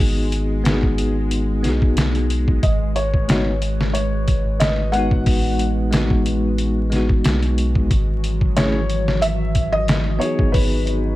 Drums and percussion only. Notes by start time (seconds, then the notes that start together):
0.32 closed hi-hat
0.65 snare, closed hi-hat
0.83 kick
0.98 closed hi-hat
1.31 closed hi-hat
1.64 snare, closed hi-hat
1.82 kick
1.97 snare, closed hi-hat
2.15 closed hi-hat
2.30 closed hi-hat
2.48 kick
2.63 kick, closed hi-hat
2.96 closed hi-hat
3.14 kick
3.29 snare, closed hi-hat
3.62 closed hi-hat
3.81 snare
3.95 closed hi-hat
4.28 kick, closed hi-hat
4.60 snare, closed hi-hat
4.93 closed hi-hat
5.11 kick
5.26 kick, open hi-hat
5.59 closed hi-hat
5.93 snare, closed hi-hat
6.10 kick
6.26 closed hi-hat
6.58 closed hi-hat
6.92 snare, closed hi-hat
7.09 kick
7.24 snare, closed hi-hat
7.42 closed hi-hat
7.58 closed hi-hat
7.75 kick
7.91 kick, closed hi-hat
8.24 closed hi-hat
8.41 kick
8.57 snare, closed hi-hat
8.90 closed hi-hat
9.08 snare
9.22 closed hi-hat
9.55 kick, closed hi-hat
9.88 snare, closed hi-hat
10.21 closed hi-hat
10.39 kick
10.54 kick, open hi-hat
10.87 closed hi-hat